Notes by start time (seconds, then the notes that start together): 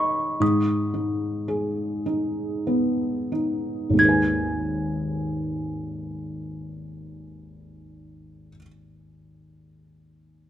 Already playing: D#3 A#4 D#5 C#6
0.40 G#2 D#6
0.94 D#4
1.48 G#4
2.06 D#4
2.67 B3
3.32 D#4
3.90 G#1 D#2
3.97 D#4 G#4 G#6
4.05 B4 G#5